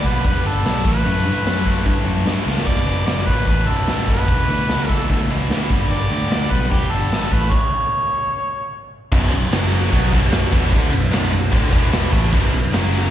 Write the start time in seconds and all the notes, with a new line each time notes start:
0.04 B1 G2 D3 G3 B4, kick, open hi-hat
0.24 E1 G2 D3 G3 B4, kick, open hi-hat
0.43 G1 G2 D3 G3 A4, open hi-hat
0.64 B1 G2 D3 G3, snare, open hi-hat
0.84 A1 A2 E3 A3 B4, kick, open hi-hat
1.05 F#2 A2 E3 A3, open hi-hat
1.24 G2 A2 E3 A3, open hi-hat
1.45 F#2 A2 E3 A3, snare, open hi-hat
1.64 A2 E3 A3, kick, open hi-hat
1.85 G2 A2 E3 A3, kick, open hi-hat
2.05 F#2 A2 E3 A3, open hi-hat
2.25 G2 A2 E3 A3, snare, open hi-hat
2.45 C#2 A2 E3 A3, snare
2.58 snare
2.65 B0 B1 F#2 B2 D5, kick, open hi-hat
2.86 F#1 B1 F#2 B2, open hi-hat
3.05 F#1 B1 F#2 B2 D5, snare, open hi-hat
3.27 D1 B1 F#2 B2 B4, kick, open hi-hat
3.47 A1 B1 F#2 B2 B4, kick, open hi-hat
3.66 B0 B1 F#2 B2 A4, open hi-hat
3.86 D1 B1 F#2 B2, snare, open hi-hat
4.08 F#1 B1 F#2 B2 B4, kick, open hi-hat
4.28 E1 E2 B2 E3, kick, open hi-hat
4.47 D2 E2 B2 E3, open hi-hat
4.68 C#2 E2 B2 E3, snare, open hi-hat
4.89 E2 B2 E3 A4, kick, open hi-hat
5.09 D2 E2 B2 E3, kick, open hi-hat
5.28 C#2 E2 B2 E3, open hi-hat
5.49 D2 E2 B2 E3, snare, open hi-hat
5.70 G1 G2 D3 G3, kick, open hi-hat
5.88 G1 G2 D3 G3 D5, open hi-hat
6.09 D2 G2 D3 G3, open hi-hat
6.29 D2 G2 D3 G3, snare, open hi-hat
6.50 B1 G2 D3 G3 B4, kick, open hi-hat
6.70 E1 G2 D3 G3 G4, kick, open hi-hat
6.90 G1 G2 D3 G3 A4, open hi-hat
7.10 G#1 G2 D3 G3, snare, open hi-hat
7.30 A1 A2 E3 A3 B4, kick, open hi-hat
7.50 C#5, kick, crash
9.12 B0 B1 F#2 B2, kick, crash
9.31 B0 B1 F#2, ride
9.52 F#1 F#2 C#3 F#3, snare, ride
9.73 ride
9.91 B1 B2 F#3 B3, kick, ride
10.13 B0 B1 F#2 B2, kick, ride
10.32 snare, ride
10.52 E1 E2 B2 E3, kick, ride
10.71 D1 D2 A2 D3, kick, ride
10.92 B0 B1 F#2, ride
11.11 B0 B1 F#2 B2, snare, ride
11.31 B0 B1 F#2, ride
11.51 D1 D2 A2 D3, kick, ride
11.72 E1 E2 B2 E3, kick, ride
11.93 snare, ride
12.11 A1 A2 E3 A3, kick, ride
12.31 B0 B1 F#2 B2, kick, ride
12.52 B0 B1 F#2, ride
12.72 F#1 F#2 C#3 F#3, snare, ride
12.93 ride